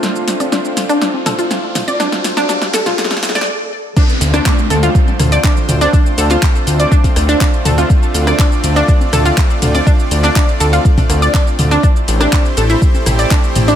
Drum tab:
CC |--------------------------------|--------------------------------|x-------------------------------|--------------------------------|
HH |x---o-x-x---o-x-x---o-x-x---o-x-|x---o-x-x---o-x-x-o-o-x---------|x---o-x-x---o-x-x---o-x-x---o-x-|x---o-x-x---o-x-x-o-o-x-x---o-x-|
SH |x-x-x-x-x-x-x-x-x---x-x-x---x-x-|x-x-x-x-x-x-x-x-x---x-x---------|x-x-x-x-x-x-x-x-x-x-x-x-x-x-x-x-|x-x-x-x-x-x-x-x-x-x-x-x-x-x-x-x-|
CP |--------------------------------|--------------------------------|--------x---------------x-------|------x-x---------------x-------|
SD |o---o---o---o---o---o---o---o---|o-o-o-o-o-o-o-o-oooooooo--------|------r-------------r-----------|--------------------r-----------|
T2 |--------------------o-------o---|--------------o-----------------|--------------------o-------o---|----------------------------o---|
CG |------o-----o-----o-----o-----o-|------o-----o-----o-------------|------o-----o-----o-----o-----o-|------o-----------o-----o-----o-|
BD |--------------------------------|--------------------------------|o-------o-------o-------o-------|o-------o-------o-o-----o-------|

CC |--------------------------------|--------------------------------|--------------------------------|
HH |x---o-x-x---o-x-x---o-x-x---o-x-|x---o-x-----o-x-x-o-o-x-x---o-x-|x---o-x-x---o-x-x---o-x-x---o-x-|
SH |x-x-x-x-x-x-x-x-x-x-x-x-x-x-x-x-|x-x-x-x-x-x-x-x-x-x-x-x-x-x-x-x-|x-x-x-x-x-x-x-x-x-x-x-x-x-x-x-x-|
CP |--------x---------------x-------|------x-x---------------x-------|--------x---------------x-------|
SD |------r-------------r-----------|--------------------r-----------|------r-------------r-----------|
T2 |--------------------o-------o---|------------------o---------o---|--------------------o-------o---|
CG |------o-----o-----o-----o-----o-|------o-----------o-----o-----o-|------o-----o-----o-----o-----o-|
BD |o-------o-------o-------o-------|o-------o-------o-o-----o-------|o-------o-------o-------o-------|